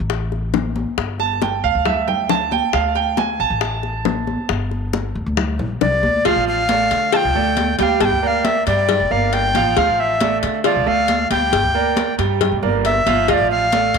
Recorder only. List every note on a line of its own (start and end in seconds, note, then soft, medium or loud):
5.81 6.27 D5 loud
6.25 6.47 F5 loud
6.48 7.15 F5 loud
7.13 7.78 G5 loud
7.13 7.17 A5 loud
7.79 8.02 F5 loud
7.79 7.84 G5 medium
8.01 8.06 A5 loud
8.05 8.23 G5 loud
8.23 8.28 G5 medium
8.27 8.46 F5 loud
8.45 8.66 E5 medium
8.67 9.13 D5 medium
9.11 9.35 F5 medium
9.33 9.79 G5 loud
9.78 10.01 F5 loud
10.00 10.38 E5 medium
10.65 10.89 D5 medium
10.88 11.31 F5 loud
11.31 12.15 G5 loud
12.85 13.31 E5 medium
13.29 13.34 D#5 medium
13.33 13.50 D5 medium
13.51 13.98 F5 loud